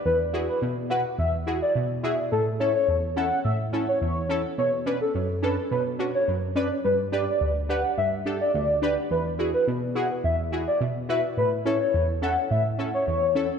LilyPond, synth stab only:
\new Staff \with { instrumentName = "Synth stab" } { \time 4/4 \key e \dorian \tempo 4 = 106 << { r8 <e' fis' gis'>8 r8 <e' fis' b'>8 r8 <e' fis' gis'>8 r8 <e' fis' gis'>8 | r8 <cis' e' a'>8 r8 <cis' e' a'>8 r8 <cis' e' a'>8 r8 <cis' e' a'>8 | r8 <cis' d' b'>8 r8 <cis' d' a'>8 r8 <cis' d' fis'>8 r8 <cis' d' b'>8 | r8 <d' g' b'>8 r8 <d' g' b'>8 r8 <d' g' a'>8 r8 <d' g' b'>8 |
r8 <e' fis' gis'>8 r8 <e' fis' gis'>8 r8 <e' fis' gis'>8 r8 <e' fis' b'>8 | r8 <cis' e' a'>8 r8 <cis' e' a'>8 r8 <cis' e' a'>8 r8 <cis' e' a'>8 | } \\ { e,4 b,4 e,4 b,4 | a,4 e,4 a,4 e,4 | b,4 fis,4 b,4 fis,4 | g,4 d,4 g,4 d,4 |
e,4 b,4 e,4 b,4 | a,4 e,4 a,4 e,4 | } >> }